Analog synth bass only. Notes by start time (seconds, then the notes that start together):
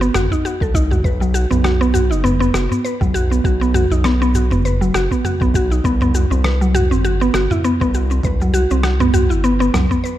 Already playing: G1
0.15 G1
0.61 C2
1.04 B1
1.51 B1
2.11 F#1
2.54 F#1
3.01 B1
3.44 B1
3.91 B1
4.51 F#1
4.95 F#1
5.41 B1
5.84 C2
6.31 C2
6.91 G1
7.34 G1
7.81 C2
8.24 C2
8.71 C2
9.31 G1
9.74 C2